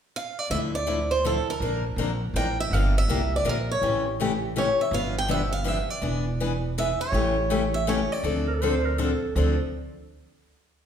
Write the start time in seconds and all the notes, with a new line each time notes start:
0.16 F5
0.39 D5
0.50 D2 D3 F3 A3 E4 E5
0.75 D5
0.87 D3 F3 A3 E4
1.11 C5
1.25 D3 F3 A3 E4 A4
1.50 A#4
1.60 A#1 D3 F3 A#3 D4 A#4
1.96 A#1 D3 F3 A#3 D4 A#4
2.34 A1 D3 F3 A#3 D4 A#4 G5
2.60 E5
2.71 G1 D3 F3 A#3 D4 G4 F5
2.98 E5
3.08 C2 D3 F3 A#3 D4 G4
3.36 D5
3.44 A#1 D3 F3 A#3 D4 G4
3.49 A#4
3.71 C#5
3.82 A1 C#3 E3 A3 C#4 G4
4.20 C#3 E3 A3 C#4 G4
4.56 C#3 E3 A3 C#4 G4 C#5
4.81 E5
4.91 G1 D3 F3 B3 D4 G4 F5
5.18 G5
5.28 D3 F3 B3 D4 G4 E5
5.53 F5
5.64 D3 F3 B3 D4 G4 E5
5.90 D5
6.02 E1 E3 B3 D4 G#4
6.40 E3 B3 D4 G#4
6.78 E3 B3 D4 G#4 E5
7.01 C#5
7.12 A1 C#3 E3 A3 C#4 G4
7.50 C#3 E3 A3 C#4 G4
7.74 E5
7.87 C#3 E3 A3 C#4 G4 C#5
8.12 D5
8.23 D2 D3 F3 C4 D4 A4
8.47 A#4
8.55 A4
8.62 D3 F3 C4 D4 A4 C5
8.85 A#4
8.98 D3 F3 C4 D4 A4
9.35 D2 D3 F3 C4 D4 A4